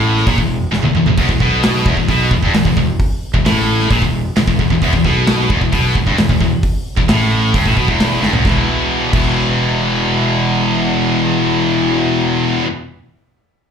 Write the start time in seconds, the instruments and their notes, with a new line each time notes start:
Already playing: fingered electric bass A1, distorted electric guitar A2
0.17 snare
0.27 fingered electric bass A#1, distorted electric guitar A#2, kick, open hi-hat
0.38 fingered electric bass E1, distorted electric guitar E2, kick
0.72 fingered electric bass E1, distorted electric guitar E2, snare
0.83 fingered electric bass E1, distorted electric guitar E2, high tom
0.94 fingered electric bass E1, distorted electric guitar E2, mid tom
1.05 fingered electric bass E1, distorted electric guitar E2, floor tom
1.17 fingered electric bass E1, distorted electric guitar E2, kick, open hi-hat, crash
1.29 fingered electric bass E1, distorted electric guitar E2, kick
1.40 fingered electric bass B1, distorted electric guitar B2, kick
1.63 snare, open hi-hat
1.86 fingered electric bass E1, distorted electric guitar E2, kick
1.97 fingered electric bass E1, distorted electric guitar E2, kick
2.08 fingered electric bass B1, distorted electric guitar B2, kick, open hi-hat
2.31 fingered electric bass E1, distorted electric guitar E2, kick
2.43 fingered electric bass G1, distorted electric guitar G2, kick
2.54 fingered electric bass E1, distorted electric guitar E2, snare, open hi-hat
2.65 fingered electric bass E1, distorted electric guitar E2, kick
2.77 fingered electric bass E1, distorted electric guitar E2, kick
3.00 kick, open hi-hat
3.34 fingered electric bass E1, distorted electric guitar E2, kick
3.45 fingered electric bass A1, distorted electric guitar A2, snare, open hi-hat
3.80 snare
3.91 fingered electric bass A#1, distorted electric guitar A#2, kick, open hi-hat
4.02 fingered electric bass E1, distorted electric guitar E2, kick
4.36 fingered electric bass E1, distorted electric guitar E2, snare, open hi-hat
4.47 fingered electric bass E1, distorted electric guitar E2, kick
4.59 fingered electric bass E1, distorted electric guitar E2, kick
4.70 fingered electric bass E1, distorted electric guitar E2, kick
4.82 fingered electric bass E1, distorted electric guitar E2, kick, open hi-hat
4.93 fingered electric bass E1, distorted electric guitar E2, kick
5.04 fingered electric bass B1, distorted electric guitar B2, kick, snare
5.27 snare, open hi-hat
5.50 fingered electric bass E1, distorted electric guitar E2, kick
5.61 fingered electric bass E1, distorted electric guitar E2, kick
5.72 fingered electric bass B1, distorted electric guitar B2, kick, open hi-hat
5.95 fingered electric bass E1, distorted electric guitar E2, kick
6.07 fingered electric bass G1, distorted electric guitar G2, kick
6.18 fingered electric bass E1, distorted electric guitar E2, snare, open hi-hat
6.29 fingered electric bass E1, distorted electric guitar E2, kick
6.41 fingered electric bass E1, distorted electric guitar E2, kick
6.63 kick, open hi-hat
6.97 fingered electric bass E1, distorted electric guitar E2, kick
7.08 fingered electric bass A1, distorted electric guitar A2, snare, open hi-hat
7.54 fingered electric bass G1, distorted electric guitar G2, kick, open hi-hat
7.66 fingered electric bass A1, distorted electric guitar A2, kick
7.77 fingered electric bass B1, distorted electric guitar B2, kick
7.88 fingered electric bass E1, distorted electric guitar E2, kick
8.00 snare, open hi-hat
8.22 fingered electric bass G1, distorted electric guitar G2, snare
8.33 fingered electric bass E1, distorted electric guitar E2, floor tom
8.45 fingered electric bass E1, distorted electric guitar E2 B2, kick, snare
8.49 distorted electric guitar E3
9.13 fingered electric bass E1, distorted electric guitar E2 B2, kick, crash
9.17 distorted electric guitar E3